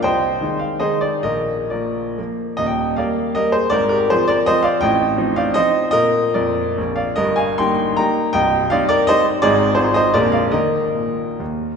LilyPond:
<<
  \new Staff \with { instrumentName = "Grand piano" } { \time 3/4 \key ees \major \tempo 4 = 155 <c'' ees'' g''>4. f''8 <aes' c'' ees''>8 d''8 | <bes' ees''>4 <f' bes' d''>4 r4 | ees''16 <ees'' g''>8. <d'' f''>4 <bes' ees''>8 <aes' c''>8 | <bes' d''>8 <g' bes'>8 <aes' c''>8 <bes' d''>8 <c'' ees''>8 <d'' f''>8 |
<ees'' g''>4. <d'' f''>8 <c'' ees''>4 | <bes' ees''>4 <bes' d''>4. <d'' f''>8 | <bes' ees''>8 <f'' aes''>8 <g'' c'''>4 <g'' bes''>4 | <ees'' g''>4 <d'' f''>8 <bes' d''>8 <c'' ees''>8 r8 |
<aes' d''>4 <aes' c''>8 <c'' ees''>8 <bes' d''>8 <d'' f''>8 | <bes' ees''>2 r4 | }
  \new Staff \with { instrumentName = "Grand piano" } { \clef bass \time 3/4 \key ees \major c,4 <ees aes ees'>4 <ees aes ees'>4 | bes,,4 <f bes>4 <f bes>4 | <ees,, ees,>4 <g bes>4 <g bes>4 | <aes,, aes,>4 <f c' f'>4 <f c' f'>4 |
<a,, a,>4 <f c' ees'>4 <f c' ees'>4 | <bes, bes f'>4 f,4 bes,,4 | <g,, g,>4 <g bes ees'>4 <g bes ees'>4 | <c,, c,>4 <g c' ees'>4 <g c' ees'>4 |
<aes,, aes, aes c' ees'>4 <aes,, aes, aes c' f'>4 <bes,,, bes,, aes bes f'>4 | <ees bes ees'>4 bes,4 ees,4 | }
>>